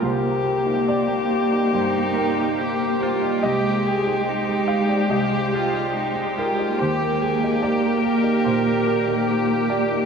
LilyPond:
<<
  \new Staff \with { instrumentName = "Analog synth pad" } { \time 4/4 \key c \minor \tempo 4 = 71 <bes g' c''>1 | <aes c'' g''>1 | <bes bes' g''>1 | }
  \new Staff \with { instrumentName = "Viola" } { \time 4/4 \key c \minor r2 ees'4 g'8 f'8 | g'8 aes'8 ees'4 g'8 f'8 ees'8 f'8 | g'8 aes'8 g'8 bes'4. g'4 | }
  \new Staff \with { instrumentName = "Violin" } { \time 4/4 \key c \minor g'1 | g'1 | g'1 | }
  \new Staff \with { instrumentName = "Grand piano" } { \time 4/4 \key c \minor << { c''4 d''4 c''8 bes'4 c''8 | ees''4. f''16 d''16 ees''4 r8 bes'8 | c''4 d''4 c''8 bes'4 d''8 | } \\ { c,16 bes16 g'16 ees'8 bes16 g'16 ees'16 g,16 bes16 g'16 ees'8 bes16 g'16 ees'16 | c,16 aes16 g'16 ees'8 aes16 g'16 ees'16 c,16 aes16 g'16 ees'8 aes16 g'16 ees'16 | ees,16 bes16 g'16 ees'8 bes16 g'16 ees'16 bes,16 bes16 g'16 ees'8 bes16 g'16 ees'16 | } >> }
  \new Staff \with { instrumentName = "Cello" } { \time 4/4 \key c \minor bes1 | aes1 | bes1 | }
>>